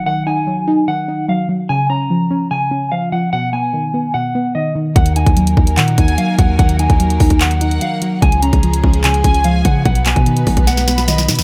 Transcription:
Already playing: F#3 D#4
0.06 D#3 F#5
0.27 D#4 G#5
0.47 F#3
0.68 D#4
0.88 D#3 F#5
1.08 D#4
1.28 F#3 F5
1.49 F#3
1.69 C#3 G#5
1.90 C#4 A#5
2.10 F3
2.31 C#4
2.51 C#3 G#5
2.71 C#4
2.92 F3 F5
3.12 F3 F#5
3.33 B2 F#5
3.53 B3 G#5
3.73 D#3
3.94 B3
4.14 B2 F#5
4.35 B3
4.55 D#3 D#5
4.75 D#3
4.96 D#2 D#3 F#3 A#3 D#4 A#4 F#5, kick, closed hi-hat
5.06 closed hi-hat
5.16 D#4 G#5, closed hi-hat
5.26 D#2, kick, closed hi-hat
5.37 F#3, closed hi-hat
5.47 closed hi-hat
5.57 D#2 D#4, kick
5.67 closed hi-hat
5.77 A#2 D#3 F#5, clap, closed hi-hat
5.88 closed hi-hat
5.98 D#2 D#4 G#5, kick, closed hi-hat
6.08 closed hi-hat
6.18 F#3 F5, closed hi-hat
6.39 D#2 F#3 F#5, kick, closed hi-hat
6.59 D#2 D#3 F#5, kick, closed hi-hat
6.69 closed hi-hat
6.79 D#4 G#5, closed hi-hat
6.90 D#2, kick, closed hi-hat
7.00 F#3, closed hi-hat
7.10 closed hi-hat
7.20 D#2 D#4, kick, open hi-hat
7.30 kick, closed hi-hat
7.41 D#3 F#5, clap, closed hi-hat
7.51 closed hi-hat
7.61 D#4 F#5, closed hi-hat
7.71 closed hi-hat
7.81 F#3 F5, closed hi-hat
8.02 F#3, closed hi-hat
8.22 C#2 C#3 F3 G#3 C#4 G#4 G#5, kick, closed hi-hat
8.32 closed hi-hat
8.42 C#4 A#5, closed hi-hat
8.53 C#2, kick, closed hi-hat
8.63 F3, closed hi-hat
8.73 closed hi-hat
8.84 C#2 C#4, kick
8.94 closed hi-hat
9.04 C#3 G#5, clap, closed hi-hat
9.14 closed hi-hat
9.24 C#2 C#4 G#5, kick, closed hi-hat
9.34 closed hi-hat
9.44 F3 F5, closed hi-hat
9.65 C#3 F3 F#5, kick, closed hi-hat
9.85 B1 B2 F#3 B3 D#4 B4 F#5, kick, closed hi-hat
9.95 closed hi-hat
10.06 B3 G#5, clap, closed hi-hat
10.16 B2, kick, closed hi-hat
10.26 D#3, closed hi-hat
10.37 closed hi-hat
10.47 B1 B3, kick, open hi-hat
10.57 kick, closed hi-hat
10.67 B2 F#5, snare, closed hi-hat
10.77 snare, closed hi-hat
10.88 B3 B5, snare, closed hi-hat
10.98 snare, closed hi-hat
11.08 D#3 D#5, snare, closed hi-hat
11.18 snare
11.28 B2 D#3, snare, closed hi-hat
11.35 B1, snare, closed hi-hat

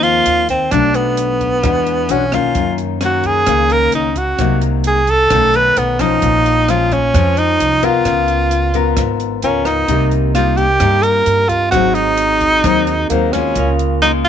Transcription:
Already playing: D#2 D#3 F3 A#3 C4
0.03 F4, closed hi-hat
0.26 D#2, closed hi-hat
0.49 C4, kick, closed hi-hat
0.71 B1 B2 F#3 A3 D4, kick, cross-stick, closed hi-hat
0.94 B3, closed hi-hat
1.17 closed hi-hat
1.41 kick, closed hi-hat
1.63 E2 E3 G#3 D4 F#4, kick, cross-stick, closed hi-hat
1.87 closed hi-hat
2.09 B1 G#3 C#4 D4 F#4, closed hi-hat
2.32 D#3 A#3 C#4 F4, kick, cross-stick, closed hi-hat
2.55 F#2, kick, closed hi-hat
2.78 closed hi-hat
3.01 D#3 A#3 C#4, cross-stick, closed hi-hat
3.05 F#4
3.24 G#4, kick, closed hi-hat
3.46 C#2 C#3 D#3 A#3 C#4, kick, cross-stick, closed hi-hat
3.70 A#4, closed hi-hat
3.92 C#2 D#4, closed hi-hat
4.16 F#4, kick, closed hi-hat
4.39 C2 C3 F#3 A#3 D#4, kick, cross-stick, closed hi-hat
4.61 closed hi-hat
4.84 G#4, closed hi-hat
5.07 A4, kick, closed hi-hat
5.30 B1 B2 D#3 A3 C#4, kick, cross-stick, closed hi-hat
5.54 B4, closed hi-hat
5.77 B1 B3, closed hi-hat
5.99 F3 G#3 C#4 D#4, kick, cross-stick, closed hi-hat
6.22 A#1 A#2, kick, closed hi-hat
6.46 closed hi-hat
6.68 F3 G#3 C#4 F4, cross-stick, closed hi-hat
6.91 C#4, kick, closed hi-hat
7.14 F2 F3 G#3 C#4, kick, cross-stick, closed hi-hat
7.37 D#4, closed hi-hat
7.60 C2, closed hi-hat
7.83 B3 F4 A#4, kick, closed hi-hat
8.05 C#2 C#3, kick, cross-stick, closed hi-hat
8.28 closed hi-hat
8.51 closed hi-hat
8.74 B3 F4 A#4, kick, closed hi-hat
8.97 G#1 G#2, kick, cross-stick, closed hi-hat
9.20 closed hi-hat
9.42 C#2 B3 C#4 F4 A#4, closed hi-hat
9.65 D#4, kick, cross-stick, closed hi-hat
9.86 C2 C3 G3 A#3 C4 D#4 G4 A#4, kick, closed hi-hat
9.92 D#5
10.11 closed hi-hat
10.35 G3 A#3 D#4 F4, cross-stick, closed hi-hat
10.57 G4, kick, closed hi-hat
10.80 G2 G3 A#3 D#4, kick, cross-stick, closed hi-hat
11.02 A#4, closed hi-hat
11.26 G2, closed hi-hat
11.48 F4, kick, closed hi-hat
11.69 G#1 F#3 C4 F#4, kick, cross-stick, closed hi-hat
11.73 G#2 C4 D#4 G#4 D#5
11.94 D#4, closed hi-hat
12.17 closed hi-hat
12.41 kick, closed hi-hat
12.64 D#2 D#3 F#3 C4 D#4, kick, cross-stick, closed hi-hat
12.87 closed hi-hat
13.10 D#2 F#3 A#3 C4 D#4, closed hi-hat
13.32 G#3 A#3 C#4 F4, kick, cross-stick, closed hi-hat
13.53 C#2 C#3 C#4 F4, kick, closed hi-hat
13.57 A#4 F5
13.79 closed hi-hat
14.02 G#3 A#3 D#4 F4, cross-stick, closed hi-hat
14.25 F4, kick, closed hi-hat

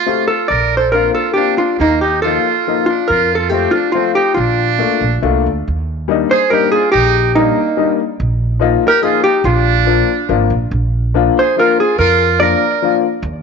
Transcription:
Already playing: F4 A4
0.06 A3 C4 F4 G4
0.28 F4 A4
0.48 A#1 A#4 D5
0.77 A4 C5
0.92 A#3 C4 D4 F4 A#4
1.13 F4 A4
1.34 A#3 C4 D4 G4
1.38 F4
1.58 D4 F4
1.79 D#2 A#3 D#4
2.01 D#4 G4
2.22 F3 A#3 F4 A4
2.26 D#4 F4
2.67 F3 A#3 D#4 F4
2.86 D4 F4
3.08 F2 F4 A#4
3.35 F4 A4
3.49 F3 A3 C4 F4 G4
3.71 D4 F4
3.92 F3 A3 C4 F4
4.15 D#4 G4
4.34 A#1 D4 F4
4.79 A3 A#3 D4 F4
5.01 A#1
5.22 C2 A3 A#3 D4 F4
5.46 D2
5.68 D#2
6.08 G3 A#3 D4 D#4
6.31 G#4 C5
6.50 G3 A#3 D4 D#4 G4 A#4
6.72 F4 G#4
6.92 A#1 D#4 G4
7.34 G3 A#3 D4 D#4
7.77 G3 A#3 D4 D#4
8.20 A#1
8.60 F3 A#3 D#4 F4
8.88 G4 A#4
9.02 F3 A#3 D#4 F4 G#4
9.24 D#4 G4
9.44 A#1 D4 F4
9.86 F3 A#3 D4 F4
10.29 G#1 F3 A#3 D4 F4
10.50 A#1
10.71 A#1
11.14 F3 A#3 D4 F4
11.39 G#4 C5
11.56 F3 A#3 D4 F4 A#4
11.80 F4 G#4
11.99 F2 F4 A#4
12.39 F3 A#3 D4 F4 A#4 D5
12.82 F3 A#3 D4 F4
13.23 D#2

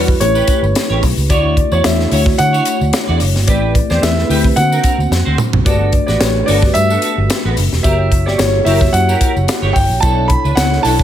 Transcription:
Already playing: E2 G3 D4 E4 F#4 B4
0.08 muted clean electric guitar stroke, kick, tambourine
0.20 A1 A3 C#4 E4 G4 B4 C#5, muted clean electric guitar stroke, closed hi-hat, tambourine
0.35 C#4 G4 B4, tambourine
0.47 C#4 G4 B4, kick, closed hi-hat, tambourine
0.62 G1, muted clean electric guitar stroke, tambourine
0.75 muted clean electric guitar stroke, snare, closed hi-hat, tambourine
0.90 A1 C#4 G4 C#5
1.02 B1, muted clean electric guitar stroke, kick, open hi-hat, tambourine
1.17 C#2, muted clean electric guitar stroke, tambourine
1.29 D2 A3 D4 E4 F#4 C#5 D5, kick, closed hi-hat, tambourine
1.57 muted clean electric guitar stroke, kick, closed hi-hat
1.72 E2 E4 F#4 C#5 D5, tambourine
1.84 E2 A3 D4 E4 F#4 C#5 E5, muted clean electric guitar stroke, snare, closed hi-hat, tambourine
1.99 muted clean electric guitar stroke, snare
2.11 D2 A3 D4 E4 F#4 C#5, open hi-hat, tambourine
2.26 muted clean electric guitar stroke, kick, snare
2.38 D3 F#5, muted clean electric guitar stroke, closed hi-hat, tambourine
2.53 E4 F#4 C#5, tambourine
2.65 E4 F#4 C#5, closed hi-hat, tambourine
2.81 D2, muted clean electric guitar stroke, tambourine
2.93 muted clean electric guitar stroke, snare, closed hi-hat, tambourine
3.08 E2 E4 F#4 D5
3.20 F#1, muted clean electric guitar stroke, open hi-hat, tambourine
3.35 G1, muted clean electric guitar stroke, snare, tambourine
3.47 A1 A3 C4 E4 G4 B4 D5, kick, closed hi-hat, tambourine
3.75 muted clean electric guitar stroke, kick, closed hi-hat
3.90 E2 C4 G4 C5 D5, snare, tambourine
4.02 E2 A3 C4 E4 G4 B4 E5, muted clean electric guitar stroke, snare, closed hi-hat, tambourine
4.17 muted clean electric guitar stroke, snare
4.28 D2 A3 C4 E4 G4 B4, open hi-hat, tambourine
4.44 muted clean electric guitar stroke, kick, tambourine
4.56 D3 A#3 C4 D4 F#4 C5 F#5, muted clean electric guitar stroke, closed hi-hat, tambourine
4.72 C4 F#4 A#4, tambourine
4.84 C4 F#4 A#4, kick, closed hi-hat, tambourine
4.98 D2, muted clean electric guitar stroke, tambourine
5.11 F2, muted clean electric guitar stroke, snare, tambourine
5.25 D2 C4 F#4 C5
5.38 muted clean electric guitar stroke, mid tom, tambourine
5.53 A#1, muted clean electric guitar stroke, floor tom
5.65 G1 A3 B3 D4 F#4 G4 A4 B4 D5, kick, closed hi-hat, tambourine
5.93 muted clean electric guitar stroke, kick, closed hi-hat
6.07 A1 B3 F#4 B4 D5, snare, tambourine
6.19 A1 A3 D4 F#4 G4 B4 C#5, muted clean electric guitar stroke, snare, closed hi-hat, tambourine
6.35 muted clean electric guitar stroke
6.46 G1 A3 B3 D4 F#4 G4 A4 D5, open hi-hat, tambourine
6.54 B4
6.62 muted clean electric guitar stroke, kick, snare, tambourine
6.74 G2 E5, muted clean electric guitar stroke, closed hi-hat, tambourine
6.90 B3 F#4 A4, tambourine
7.02 B3 F#4 A4, closed hi-hat, tambourine
7.18 G1, muted clean electric guitar stroke
7.30 snare, closed hi-hat, tambourine
7.45 A1 B3 F#4 B4
7.57 F#1, muted clean electric guitar stroke, open hi-hat, tambourine
7.72 E1, muted clean electric guitar stroke, snare
7.83 F#1 A#3 E4 F#4 G4 A#4 C#5 E5, kick, closed hi-hat, tambourine
8.12 muted clean electric guitar stroke, kick, closed hi-hat
8.26 G1 E4 G4 C#5 D5, snare
8.38 G1 A#3 E4 F#4 G4 C#5, snare, closed hi-hat, tambourine
8.54 muted clean electric guitar stroke
8.65 F#1 A#3 E4 F#4 G4 A#4 C#5 E5, open hi-hat, tambourine
8.81 muted clean electric guitar stroke, kick, snare, tambourine
8.93 F#2 F#5, muted clean electric guitar stroke, closed hi-hat, tambourine
9.08 E4 G4 A#4, tambourine
9.21 E4 G4 A#4, kick, closed hi-hat, tambourine
9.35 F#1, muted clean electric guitar stroke, tambourine
9.48 muted clean electric guitar stroke, snare, closed hi-hat, tambourine
9.62 G1 E4 G4 C#5
9.73 G1 G5, muted clean electric guitar stroke, kick, open hi-hat, tambourine
9.89 A#1, muted clean electric guitar stroke, tambourine
10.00 B1 B3 D4 E4 A4 C#5 A5, kick, closed hi-hat, tambourine
10.28 B5, muted clean electric guitar stroke, kick, closed hi-hat
10.44 C#2 D4 E4 B4, tambourine
10.55 C#2 B3 D4 E4 A4 C#5 F#5, muted clean electric guitar stroke, snare, closed hi-hat, tambourine
10.72 muted clean electric guitar stroke, snare
10.83 B1 B3 C#4 D4 E4 A4 C#5 A5, open hi-hat, tambourine
10.91 D4
10.99 muted clean electric guitar stroke, kick, snare, tambourine

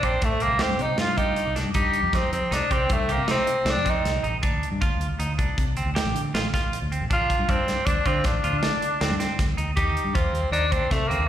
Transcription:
0.03 A#1 C4 D4, kick, closed hi-hat
0.22 A2 A3, kick, closed hi-hat
0.40 C2 A#3 C4, closed hi-hat
0.52 C2
0.59 C4 G4, snare, closed hi-hat
0.69 G2
0.79 C3 D#4, closed hi-hat
0.98 G2 F4, snare, closed hi-hat
1.17 D#4 G4, kick, closed hi-hat
1.36 closed hi-hat
1.46 C2
1.56 D4, snare, closed hi-hat
1.65 G2
1.74 G2 D#4 G4, kick, closed hi-hat
1.93 closed hi-hat
2.03 F2
2.13 F2 C4 D#4, kick, snare, closed hi-hat
2.32 F2 C4, closed hi-hat
2.51 C2 D4 D#4, snare, closed hi-hat
2.71 C3 C4 G4, kick, closed hi-hat
2.90 G2 A3, kick, closed hi-hat
3.08 C2 G4, closed hi-hat
3.12 A#3
3.18 C3
3.28 C4 D#4, snare, closed hi-hat
3.47 closed hi-hat
3.65 C2 C4, snare, closed hi-hat
3.70 D4
3.76 F2
3.85 C4, kick, closed hi-hat
3.90 D#4
4.04 C2, snare, closed hi-hat
4.23 A1 D#4, closed hi-hat
4.43 D2 D4, kick, closed hi-hat
4.63 closed hi-hat
4.72 G2
4.81 D2 F4, kick, closed hi-hat
4.99 D2, closed hi-hat
5.19 D2 D#4, closed hi-hat
5.38 C2 D4, kick, closed hi-hat
5.57 C3, kick, closed hi-hat
5.77 D2 C4, closed hi-hat
5.86 D2
5.95 G4, snare, closed hi-hat
6.05 A1
6.14 D3, closed hi-hat
6.34 A1 F4, snare, closed hi-hat
6.54 F4, kick, snare, closed hi-hat
6.73 closed hi-hat
6.82 D2
6.92 C4, closed hi-hat
7.01 A1
7.10 A1 D4 F4, kick, closed hi-hat
7.30 kick, closed hi-hat
7.39 G2
7.49 G2 C4 D4, kick, closed hi-hat
7.67 G2, snare, closed hi-hat
7.86 D2 D4, kick, closed hi-hat
8.05 D3 C4 F4, kick, closed hi-hat
8.24 A1 D4, kick, snare, closed hi-hat
8.43 D2 F4, closed hi-hat
8.53 D3
8.63 D4, snare, closed hi-hat
8.82 closed hi-hat
9.01 D2 C4, snare, closed hi-hat
9.11 G2
9.20 C4, snare, closed hi-hat
9.39 D2, kick, snare, closed hi-hat
9.57 D2 D#4, closed hi-hat
9.76 D#2 D#4 G4, kick, closed hi-hat
9.97 closed hi-hat
10.04 G2
10.15 D#2 C4 F4, kick, closed hi-hat
10.33 D#2, closed hi-hat
10.51 D#2 D4 D#4, closed hi-hat
10.72 D2 C4 D4, kick, closed hi-hat
10.91 C3 A3, kick, snare, closed hi-hat
11.08 D#2 A#3 C4, closed hi-hat
11.19 D#2

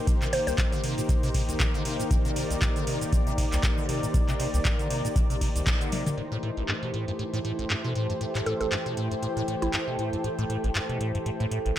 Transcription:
Already playing: D#3 A#3 D#4 G4 A#4 C5 G5
0.07 C3, kick, closed hi-hat, cabasa
0.21 C3, clap, closed hi-hat, cabasa
0.33 C3 C5, open hi-hat, ride
0.47 C2 C5, closed hi-hat, cabasa
0.58 A#2, kick, clap, closed hi-hat, cabasa
0.72 D3, closed hi-hat, cabasa
0.83 C3, open hi-hat, ride
0.98 A#2, closed hi-hat, cabasa
1.09 C3, kick, closed hi-hat, cabasa
1.23 C3, open hi-hat, cabasa
1.34 C3, kick, open hi-hat, ride
1.49 C2, closed hi-hat, cabasa
1.60 A#2, kick, clap, closed hi-hat, cabasa
1.74 D3, cabasa
1.85 C3, open hi-hat, ride
1.99 A#2, closed hi-hat, cabasa
2.11 C3 D5, kick, closed hi-hat, cabasa
2.25 C3, closed hi-hat, cabasa
2.36 C3, open hi-hat, ride
2.50 C2, closed hi-hat, cabasa
2.62 A#2, kick, clap, closed hi-hat, cabasa
2.76 D3, closed hi-hat, cabasa
2.87 C3, open hi-hat, ride
3.01 A#2, closed hi-hat, cabasa
3.12 C3, kick, closed hi-hat, cabasa
3.27 C3, closed hi-hat, cabasa
3.38 C3, kick, open hi-hat, ride
3.52 C2, clap, closed hi-hat, cabasa
3.63 A#2, kick, clap, closed hi-hat, cabasa
3.78 D3, cabasa
3.89 C3, open hi-hat, ride
4.03 A#2, closed hi-hat, cabasa
4.14 C3, kick, closed hi-hat, cabasa
4.28 C3, clap, closed hi-hat, cabasa
4.40 C3, open hi-hat, ride
4.54 C2, closed hi-hat, cabasa
4.65 A#2, kick, clap, closed hi-hat, cabasa
4.79 D3, closed hi-hat, cabasa
4.90 C3, open hi-hat, ride
5.05 A#2, closed hi-hat, cabasa
5.16 C3, kick, closed hi-hat, cabasa
5.30 C3, open hi-hat, cabasa
5.41 C3, kick, open hi-hat, ride
5.56 C2, closed hi-hat, cabasa
5.67 A#2, kick, clap, closed hi-hat, cabasa
5.81 D3, closed hi-hat, cabasa
5.92 C3, open hi-hat, high tom, ride
6.06 A#2, closed hi-hat, mid tom, cabasa
6.17 A2 E3 A3 E4 G4 C5, closed hi-hat
6.32 A2, closed hi-hat
6.39 A2 C5, closed hi-hat
6.44 A4
6.57 A1, closed hi-hat
6.68 G2, clap, closed hi-hat
6.82 B2, closed hi-hat
6.94 A2, closed hi-hat
7.03 G5
7.08 G2, closed hi-hat
7.19 A2, closed hi-hat
7.33 A2, closed hi-hat
7.45 A2, closed hi-hat
7.59 A1, closed hi-hat
7.70 G2, clap, closed hi-hat
7.84 B2
7.95 A2, closed hi-hat
8.10 G2, closed hi-hat
8.21 A2, closed hi-hat
8.35 A2, clap, closed hi-hat
8.46 A2 A4, closed hi-hat
8.60 A1 A4, closed hi-hat
8.72 G2, clap, closed hi-hat
8.86 B2, closed hi-hat
8.97 A2, closed hi-hat
9.11 G2, closed hi-hat
9.22 A2, closed hi-hat
9.37 A2, closed hi-hat
9.48 A2, closed hi-hat
9.62 A1 E4, closed hi-hat
9.73 G2, clap, closed hi-hat
9.88 B2
9.99 A2, closed hi-hat
10.13 G2, closed hi-hat
10.24 A2, closed hi-hat
10.38 A2, closed hi-hat
10.49 A2, closed hi-hat
10.64 A1, closed hi-hat
10.75 G2, clap, closed hi-hat
10.89 B2, closed hi-hat
11.00 A2, closed hi-hat
11.15 G2, closed hi-hat
11.26 A2, closed hi-hat
11.40 A2, closed hi-hat
11.51 A2, closed hi-hat
11.65 A1, closed hi-hat

